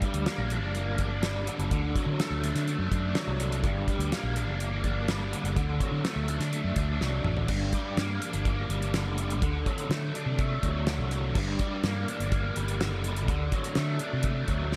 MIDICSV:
0, 0, Header, 1, 4, 480
1, 0, Start_track
1, 0, Key_signature, -2, "minor"
1, 0, Tempo, 481928
1, 1705, Time_signature, 4, 2, 24, 8
1, 14703, End_track
2, 0, Start_track
2, 0, Title_t, "Overdriven electric guitar"
2, 0, Program_c, 0, 29
2, 0, Note_on_c, 0, 43, 66
2, 0, Note_on_c, 0, 62, 66
2, 38, Note_on_c, 0, 55, 66
2, 267, Note_on_c, 0, 58, 66
2, 508, Note_off_c, 0, 62, 0
2, 512, Note_on_c, 0, 62, 73
2, 733, Note_off_c, 0, 58, 0
2, 745, Note_on_c, 0, 58, 68
2, 988, Note_off_c, 0, 43, 0
2, 989, Note_off_c, 0, 62, 0
2, 993, Note_on_c, 0, 62, 77
2, 1217, Note_off_c, 0, 55, 0
2, 1229, Note_on_c, 0, 55, 69
2, 1469, Note_on_c, 0, 50, 69
2, 1695, Note_off_c, 0, 50, 0
2, 1705, Note_off_c, 0, 58, 0
2, 1707, Note_off_c, 0, 55, 0
2, 1707, Note_on_c, 0, 50, 74
2, 1946, Note_on_c, 0, 54, 63
2, 2190, Note_on_c, 0, 57, 70
2, 2424, Note_off_c, 0, 62, 0
2, 2428, Note_on_c, 0, 62, 75
2, 2665, Note_off_c, 0, 57, 0
2, 2677, Note_on_c, 0, 57, 75
2, 2906, Note_off_c, 0, 50, 0
2, 2916, Note_off_c, 0, 62, 0
2, 2920, Note_on_c, 0, 62, 73
2, 3145, Note_off_c, 0, 54, 0
2, 3162, Note_on_c, 0, 54, 71
2, 3400, Note_on_c, 0, 50, 66
2, 3630, Note_off_c, 0, 57, 0
2, 3632, Note_off_c, 0, 50, 0
2, 3633, Note_off_c, 0, 54, 0
2, 3641, Note_on_c, 0, 43, 68
2, 3882, Note_on_c, 0, 55, 61
2, 4113, Note_on_c, 0, 58, 71
2, 4344, Note_off_c, 0, 62, 0
2, 4348, Note_on_c, 0, 62, 80
2, 4574, Note_off_c, 0, 58, 0
2, 4586, Note_on_c, 0, 58, 68
2, 4822, Note_off_c, 0, 62, 0
2, 4826, Note_on_c, 0, 62, 73
2, 4832, Note_off_c, 0, 43, 0
2, 5052, Note_off_c, 0, 55, 0
2, 5064, Note_on_c, 0, 55, 72
2, 5303, Note_on_c, 0, 50, 67
2, 5525, Note_off_c, 0, 50, 0
2, 5537, Note_on_c, 0, 50, 70
2, 5544, Note_off_c, 0, 55, 0
2, 5544, Note_off_c, 0, 58, 0
2, 5781, Note_on_c, 0, 54, 64
2, 6025, Note_on_c, 0, 57, 67
2, 6260, Note_off_c, 0, 62, 0
2, 6264, Note_on_c, 0, 62, 81
2, 6489, Note_off_c, 0, 57, 0
2, 6501, Note_on_c, 0, 57, 70
2, 6724, Note_off_c, 0, 62, 0
2, 6736, Note_on_c, 0, 62, 72
2, 6740, Note_off_c, 0, 50, 0
2, 6974, Note_off_c, 0, 54, 0
2, 6986, Note_on_c, 0, 54, 64
2, 7218, Note_on_c, 0, 50, 68
2, 7460, Note_off_c, 0, 62, 0
2, 7461, Note_off_c, 0, 50, 0
2, 7462, Note_on_c, 0, 43, 69
2, 7463, Note_off_c, 0, 57, 0
2, 7465, Note_off_c, 0, 54, 0
2, 7709, Note_on_c, 0, 55, 63
2, 7949, Note_on_c, 0, 58, 67
2, 8188, Note_on_c, 0, 62, 74
2, 8421, Note_off_c, 0, 58, 0
2, 8433, Note_on_c, 0, 58, 69
2, 8656, Note_off_c, 0, 55, 0
2, 8664, Note_off_c, 0, 43, 0
2, 8668, Note_on_c, 0, 55, 68
2, 8907, Note_on_c, 0, 50, 67
2, 9132, Note_off_c, 0, 55, 0
2, 9143, Note_on_c, 0, 55, 68
2, 9371, Note_off_c, 0, 50, 0
2, 9383, Note_on_c, 0, 50, 69
2, 9385, Note_off_c, 0, 55, 0
2, 9390, Note_off_c, 0, 58, 0
2, 9627, Note_on_c, 0, 54, 66
2, 9874, Note_on_c, 0, 57, 67
2, 10108, Note_off_c, 0, 62, 0
2, 10112, Note_on_c, 0, 62, 80
2, 10344, Note_off_c, 0, 57, 0
2, 10356, Note_on_c, 0, 57, 75
2, 10585, Note_off_c, 0, 50, 0
2, 10590, Note_off_c, 0, 54, 0
2, 10602, Note_on_c, 0, 54, 66
2, 10842, Note_on_c, 0, 50, 68
2, 11069, Note_off_c, 0, 54, 0
2, 11081, Note_on_c, 0, 54, 68
2, 11312, Note_off_c, 0, 57, 0
2, 11314, Note_off_c, 0, 54, 0
2, 11315, Note_off_c, 0, 50, 0
2, 11320, Note_on_c, 0, 43, 76
2, 11564, Note_on_c, 0, 55, 67
2, 11792, Note_on_c, 0, 58, 74
2, 12036, Note_off_c, 0, 62, 0
2, 12040, Note_on_c, 0, 62, 80
2, 12259, Note_off_c, 0, 58, 0
2, 12271, Note_on_c, 0, 58, 72
2, 12502, Note_off_c, 0, 55, 0
2, 12514, Note_on_c, 0, 55, 73
2, 12515, Note_off_c, 0, 43, 0
2, 12750, Note_on_c, 0, 50, 73
2, 12992, Note_off_c, 0, 55, 0
2, 13004, Note_on_c, 0, 55, 64
2, 13225, Note_off_c, 0, 50, 0
2, 13231, Note_off_c, 0, 58, 0
2, 13237, Note_off_c, 0, 55, 0
2, 13237, Note_on_c, 0, 50, 68
2, 13476, Note_on_c, 0, 54, 64
2, 13713, Note_on_c, 0, 57, 66
2, 13942, Note_off_c, 0, 62, 0
2, 13946, Note_on_c, 0, 62, 73
2, 14175, Note_off_c, 0, 57, 0
2, 14187, Note_on_c, 0, 57, 70
2, 14412, Note_off_c, 0, 54, 0
2, 14424, Note_on_c, 0, 54, 66
2, 14434, Note_off_c, 0, 50, 0
2, 14666, Note_on_c, 0, 50, 66
2, 14703, Note_off_c, 0, 50, 0
2, 14703, Note_off_c, 0, 54, 0
2, 14703, Note_off_c, 0, 57, 0
2, 14703, Note_off_c, 0, 62, 0
2, 14703, End_track
3, 0, Start_track
3, 0, Title_t, "Fingered electric bass"
3, 0, Program_c, 1, 33
3, 141, Note_on_c, 1, 38, 84
3, 245, Note_off_c, 1, 38, 0
3, 378, Note_on_c, 1, 34, 78
3, 622, Note_off_c, 1, 34, 0
3, 622, Note_on_c, 1, 30, 77
3, 860, Note_off_c, 1, 30, 0
3, 860, Note_on_c, 1, 31, 79
3, 1473, Note_off_c, 1, 31, 0
3, 1582, Note_on_c, 1, 30, 87
3, 1685, Note_off_c, 1, 30, 0
3, 1707, Note_on_c, 1, 38, 99
3, 1910, Note_off_c, 1, 38, 0
3, 2054, Note_on_c, 1, 50, 84
3, 2161, Note_off_c, 1, 50, 0
3, 2297, Note_on_c, 1, 38, 83
3, 2504, Note_off_c, 1, 38, 0
3, 2541, Note_on_c, 1, 50, 78
3, 2746, Note_off_c, 1, 50, 0
3, 2777, Note_on_c, 1, 42, 86
3, 2882, Note_off_c, 1, 42, 0
3, 2906, Note_on_c, 1, 42, 96
3, 3109, Note_off_c, 1, 42, 0
3, 3262, Note_on_c, 1, 36, 88
3, 3620, Note_on_c, 1, 31, 98
3, 3635, Note_off_c, 1, 36, 0
3, 3825, Note_off_c, 1, 31, 0
3, 3970, Note_on_c, 1, 38, 100
3, 4078, Note_off_c, 1, 38, 0
3, 4217, Note_on_c, 1, 34, 83
3, 4456, Note_off_c, 1, 34, 0
3, 4456, Note_on_c, 1, 30, 88
3, 4696, Note_off_c, 1, 30, 0
3, 4696, Note_on_c, 1, 31, 83
3, 5310, Note_off_c, 1, 31, 0
3, 5416, Note_on_c, 1, 30, 88
3, 5521, Note_off_c, 1, 30, 0
3, 5544, Note_on_c, 1, 38, 102
3, 5747, Note_off_c, 1, 38, 0
3, 5892, Note_on_c, 1, 50, 78
3, 5999, Note_off_c, 1, 50, 0
3, 6135, Note_on_c, 1, 38, 73
3, 6342, Note_off_c, 1, 38, 0
3, 6370, Note_on_c, 1, 50, 80
3, 6579, Note_off_c, 1, 50, 0
3, 6615, Note_on_c, 1, 42, 88
3, 6721, Note_off_c, 1, 42, 0
3, 6738, Note_on_c, 1, 38, 78
3, 6957, Note_off_c, 1, 38, 0
3, 6979, Note_on_c, 1, 36, 80
3, 7197, Note_off_c, 1, 36, 0
3, 7217, Note_on_c, 1, 33, 81
3, 7436, Note_off_c, 1, 33, 0
3, 7454, Note_on_c, 1, 31, 107
3, 7662, Note_off_c, 1, 31, 0
3, 7939, Note_on_c, 1, 43, 93
3, 8145, Note_off_c, 1, 43, 0
3, 8302, Note_on_c, 1, 31, 77
3, 8609, Note_off_c, 1, 31, 0
3, 8656, Note_on_c, 1, 31, 86
3, 9024, Note_off_c, 1, 31, 0
3, 9024, Note_on_c, 1, 30, 82
3, 9382, Note_off_c, 1, 30, 0
3, 9382, Note_on_c, 1, 38, 110
3, 9587, Note_off_c, 1, 38, 0
3, 9857, Note_on_c, 1, 50, 103
3, 10064, Note_off_c, 1, 50, 0
3, 10219, Note_on_c, 1, 48, 82
3, 10528, Note_off_c, 1, 48, 0
3, 10589, Note_on_c, 1, 38, 88
3, 10942, Note_on_c, 1, 36, 85
3, 10957, Note_off_c, 1, 38, 0
3, 11307, Note_off_c, 1, 36, 0
3, 11307, Note_on_c, 1, 31, 101
3, 11511, Note_off_c, 1, 31, 0
3, 11788, Note_on_c, 1, 43, 100
3, 11992, Note_off_c, 1, 43, 0
3, 12151, Note_on_c, 1, 31, 83
3, 12456, Note_off_c, 1, 31, 0
3, 12517, Note_on_c, 1, 31, 91
3, 12870, Note_off_c, 1, 31, 0
3, 12870, Note_on_c, 1, 30, 90
3, 13229, Note_off_c, 1, 30, 0
3, 13229, Note_on_c, 1, 38, 108
3, 13433, Note_off_c, 1, 38, 0
3, 13715, Note_on_c, 1, 50, 100
3, 13917, Note_off_c, 1, 50, 0
3, 14077, Note_on_c, 1, 48, 86
3, 14380, Note_off_c, 1, 48, 0
3, 14422, Note_on_c, 1, 38, 83
3, 14703, Note_off_c, 1, 38, 0
3, 14703, End_track
4, 0, Start_track
4, 0, Title_t, "Drums"
4, 18, Note_on_c, 9, 42, 67
4, 21, Note_on_c, 9, 36, 81
4, 117, Note_off_c, 9, 42, 0
4, 121, Note_off_c, 9, 36, 0
4, 138, Note_on_c, 9, 42, 66
4, 238, Note_off_c, 9, 42, 0
4, 260, Note_on_c, 9, 42, 60
4, 262, Note_on_c, 9, 38, 100
4, 360, Note_off_c, 9, 42, 0
4, 362, Note_off_c, 9, 38, 0
4, 501, Note_on_c, 9, 42, 58
4, 600, Note_off_c, 9, 42, 0
4, 744, Note_on_c, 9, 42, 67
4, 844, Note_off_c, 9, 42, 0
4, 978, Note_on_c, 9, 42, 61
4, 984, Note_on_c, 9, 36, 84
4, 1078, Note_off_c, 9, 42, 0
4, 1084, Note_off_c, 9, 36, 0
4, 1223, Note_on_c, 9, 42, 64
4, 1225, Note_on_c, 9, 38, 105
4, 1322, Note_off_c, 9, 42, 0
4, 1324, Note_off_c, 9, 38, 0
4, 1467, Note_on_c, 9, 42, 66
4, 1566, Note_off_c, 9, 42, 0
4, 1589, Note_on_c, 9, 42, 59
4, 1688, Note_off_c, 9, 42, 0
4, 1705, Note_on_c, 9, 42, 64
4, 1707, Note_on_c, 9, 36, 108
4, 1805, Note_off_c, 9, 42, 0
4, 1806, Note_off_c, 9, 36, 0
4, 1948, Note_on_c, 9, 36, 86
4, 1950, Note_on_c, 9, 42, 66
4, 2047, Note_off_c, 9, 36, 0
4, 2050, Note_off_c, 9, 42, 0
4, 2187, Note_on_c, 9, 42, 65
4, 2189, Note_on_c, 9, 38, 100
4, 2287, Note_off_c, 9, 42, 0
4, 2289, Note_off_c, 9, 38, 0
4, 2426, Note_on_c, 9, 42, 68
4, 2526, Note_off_c, 9, 42, 0
4, 2545, Note_on_c, 9, 42, 74
4, 2547, Note_on_c, 9, 38, 34
4, 2645, Note_off_c, 9, 42, 0
4, 2647, Note_off_c, 9, 38, 0
4, 2665, Note_on_c, 9, 42, 70
4, 2765, Note_off_c, 9, 42, 0
4, 2904, Note_on_c, 9, 36, 81
4, 2908, Note_on_c, 9, 42, 66
4, 3004, Note_off_c, 9, 36, 0
4, 3008, Note_off_c, 9, 42, 0
4, 3138, Note_on_c, 9, 42, 76
4, 3140, Note_on_c, 9, 38, 118
4, 3238, Note_off_c, 9, 42, 0
4, 3240, Note_off_c, 9, 38, 0
4, 3385, Note_on_c, 9, 42, 70
4, 3485, Note_off_c, 9, 42, 0
4, 3510, Note_on_c, 9, 42, 71
4, 3609, Note_off_c, 9, 42, 0
4, 3622, Note_on_c, 9, 42, 72
4, 3623, Note_on_c, 9, 36, 108
4, 3721, Note_off_c, 9, 42, 0
4, 3723, Note_off_c, 9, 36, 0
4, 3863, Note_on_c, 9, 36, 84
4, 3865, Note_on_c, 9, 42, 65
4, 3962, Note_off_c, 9, 36, 0
4, 3965, Note_off_c, 9, 42, 0
4, 3988, Note_on_c, 9, 42, 69
4, 4087, Note_off_c, 9, 42, 0
4, 4105, Note_on_c, 9, 42, 69
4, 4107, Note_on_c, 9, 38, 105
4, 4205, Note_off_c, 9, 42, 0
4, 4207, Note_off_c, 9, 38, 0
4, 4342, Note_on_c, 9, 42, 65
4, 4442, Note_off_c, 9, 42, 0
4, 4585, Note_on_c, 9, 42, 68
4, 4684, Note_off_c, 9, 42, 0
4, 4820, Note_on_c, 9, 42, 59
4, 4821, Note_on_c, 9, 36, 78
4, 4920, Note_off_c, 9, 42, 0
4, 4921, Note_off_c, 9, 36, 0
4, 5063, Note_on_c, 9, 42, 65
4, 5065, Note_on_c, 9, 38, 119
4, 5162, Note_off_c, 9, 42, 0
4, 5164, Note_off_c, 9, 38, 0
4, 5310, Note_on_c, 9, 42, 66
4, 5410, Note_off_c, 9, 42, 0
4, 5428, Note_on_c, 9, 42, 61
4, 5528, Note_off_c, 9, 42, 0
4, 5543, Note_on_c, 9, 36, 104
4, 5543, Note_on_c, 9, 42, 66
4, 5642, Note_off_c, 9, 36, 0
4, 5643, Note_off_c, 9, 42, 0
4, 5781, Note_on_c, 9, 36, 82
4, 5783, Note_on_c, 9, 42, 70
4, 5881, Note_off_c, 9, 36, 0
4, 5883, Note_off_c, 9, 42, 0
4, 6022, Note_on_c, 9, 42, 60
4, 6024, Note_on_c, 9, 38, 103
4, 6122, Note_off_c, 9, 42, 0
4, 6124, Note_off_c, 9, 38, 0
4, 6257, Note_on_c, 9, 42, 63
4, 6357, Note_off_c, 9, 42, 0
4, 6380, Note_on_c, 9, 42, 75
4, 6382, Note_on_c, 9, 38, 31
4, 6480, Note_off_c, 9, 42, 0
4, 6482, Note_off_c, 9, 38, 0
4, 6501, Note_on_c, 9, 42, 69
4, 6601, Note_off_c, 9, 42, 0
4, 6732, Note_on_c, 9, 42, 68
4, 6737, Note_on_c, 9, 36, 78
4, 6832, Note_off_c, 9, 42, 0
4, 6837, Note_off_c, 9, 36, 0
4, 6983, Note_on_c, 9, 38, 64
4, 7083, Note_off_c, 9, 38, 0
4, 7216, Note_on_c, 9, 45, 85
4, 7316, Note_off_c, 9, 45, 0
4, 7337, Note_on_c, 9, 43, 75
4, 7437, Note_off_c, 9, 43, 0
4, 7452, Note_on_c, 9, 49, 112
4, 7457, Note_on_c, 9, 36, 106
4, 7552, Note_off_c, 9, 49, 0
4, 7557, Note_off_c, 9, 36, 0
4, 7696, Note_on_c, 9, 42, 69
4, 7698, Note_on_c, 9, 36, 81
4, 7796, Note_off_c, 9, 42, 0
4, 7797, Note_off_c, 9, 36, 0
4, 7941, Note_on_c, 9, 42, 63
4, 7943, Note_on_c, 9, 38, 99
4, 8041, Note_off_c, 9, 42, 0
4, 8042, Note_off_c, 9, 38, 0
4, 8185, Note_on_c, 9, 42, 63
4, 8284, Note_off_c, 9, 42, 0
4, 8300, Note_on_c, 9, 42, 62
4, 8399, Note_off_c, 9, 42, 0
4, 8420, Note_on_c, 9, 36, 103
4, 8422, Note_on_c, 9, 42, 66
4, 8520, Note_off_c, 9, 36, 0
4, 8521, Note_off_c, 9, 42, 0
4, 8665, Note_on_c, 9, 42, 66
4, 8765, Note_off_c, 9, 42, 0
4, 8787, Note_on_c, 9, 42, 61
4, 8887, Note_off_c, 9, 42, 0
4, 8902, Note_on_c, 9, 42, 66
4, 8904, Note_on_c, 9, 38, 111
4, 9002, Note_off_c, 9, 42, 0
4, 9004, Note_off_c, 9, 38, 0
4, 9141, Note_on_c, 9, 42, 64
4, 9241, Note_off_c, 9, 42, 0
4, 9266, Note_on_c, 9, 42, 59
4, 9366, Note_off_c, 9, 42, 0
4, 9383, Note_on_c, 9, 36, 113
4, 9385, Note_on_c, 9, 42, 66
4, 9483, Note_off_c, 9, 36, 0
4, 9485, Note_off_c, 9, 42, 0
4, 9624, Note_on_c, 9, 36, 87
4, 9626, Note_on_c, 9, 42, 71
4, 9724, Note_off_c, 9, 36, 0
4, 9725, Note_off_c, 9, 42, 0
4, 9741, Note_on_c, 9, 42, 69
4, 9840, Note_off_c, 9, 42, 0
4, 9867, Note_on_c, 9, 42, 68
4, 9869, Note_on_c, 9, 38, 97
4, 9966, Note_off_c, 9, 42, 0
4, 9968, Note_off_c, 9, 38, 0
4, 10110, Note_on_c, 9, 42, 69
4, 10209, Note_off_c, 9, 42, 0
4, 10344, Note_on_c, 9, 42, 73
4, 10347, Note_on_c, 9, 36, 109
4, 10444, Note_off_c, 9, 42, 0
4, 10446, Note_off_c, 9, 36, 0
4, 10588, Note_on_c, 9, 36, 72
4, 10588, Note_on_c, 9, 42, 70
4, 10688, Note_off_c, 9, 36, 0
4, 10688, Note_off_c, 9, 42, 0
4, 10824, Note_on_c, 9, 42, 72
4, 10826, Note_on_c, 9, 38, 111
4, 10923, Note_off_c, 9, 42, 0
4, 10925, Note_off_c, 9, 38, 0
4, 11067, Note_on_c, 9, 42, 73
4, 11167, Note_off_c, 9, 42, 0
4, 11306, Note_on_c, 9, 49, 94
4, 11309, Note_on_c, 9, 36, 115
4, 11406, Note_off_c, 9, 49, 0
4, 11408, Note_off_c, 9, 36, 0
4, 11544, Note_on_c, 9, 42, 72
4, 11549, Note_on_c, 9, 36, 85
4, 11644, Note_off_c, 9, 42, 0
4, 11649, Note_off_c, 9, 36, 0
4, 11788, Note_on_c, 9, 42, 62
4, 11790, Note_on_c, 9, 38, 105
4, 11888, Note_off_c, 9, 42, 0
4, 11890, Note_off_c, 9, 38, 0
4, 12034, Note_on_c, 9, 42, 68
4, 12134, Note_off_c, 9, 42, 0
4, 12155, Note_on_c, 9, 42, 67
4, 12255, Note_off_c, 9, 42, 0
4, 12269, Note_on_c, 9, 42, 75
4, 12271, Note_on_c, 9, 36, 108
4, 12368, Note_off_c, 9, 42, 0
4, 12371, Note_off_c, 9, 36, 0
4, 12509, Note_on_c, 9, 42, 70
4, 12608, Note_off_c, 9, 42, 0
4, 12632, Note_on_c, 9, 42, 62
4, 12732, Note_off_c, 9, 42, 0
4, 12755, Note_on_c, 9, 42, 74
4, 12757, Note_on_c, 9, 38, 113
4, 12855, Note_off_c, 9, 42, 0
4, 12857, Note_off_c, 9, 38, 0
4, 12989, Note_on_c, 9, 42, 61
4, 13089, Note_off_c, 9, 42, 0
4, 13112, Note_on_c, 9, 42, 69
4, 13211, Note_off_c, 9, 42, 0
4, 13230, Note_on_c, 9, 36, 103
4, 13231, Note_on_c, 9, 42, 65
4, 13330, Note_off_c, 9, 36, 0
4, 13330, Note_off_c, 9, 42, 0
4, 13467, Note_on_c, 9, 42, 65
4, 13468, Note_on_c, 9, 36, 86
4, 13566, Note_off_c, 9, 42, 0
4, 13568, Note_off_c, 9, 36, 0
4, 13586, Note_on_c, 9, 42, 66
4, 13686, Note_off_c, 9, 42, 0
4, 13698, Note_on_c, 9, 42, 65
4, 13700, Note_on_c, 9, 38, 96
4, 13797, Note_off_c, 9, 42, 0
4, 13799, Note_off_c, 9, 38, 0
4, 13937, Note_on_c, 9, 42, 62
4, 14037, Note_off_c, 9, 42, 0
4, 14171, Note_on_c, 9, 42, 69
4, 14182, Note_on_c, 9, 36, 107
4, 14270, Note_off_c, 9, 42, 0
4, 14282, Note_off_c, 9, 36, 0
4, 14420, Note_on_c, 9, 42, 65
4, 14424, Note_on_c, 9, 36, 78
4, 14520, Note_off_c, 9, 42, 0
4, 14524, Note_off_c, 9, 36, 0
4, 14664, Note_on_c, 9, 38, 60
4, 14703, Note_off_c, 9, 38, 0
4, 14703, End_track
0, 0, End_of_file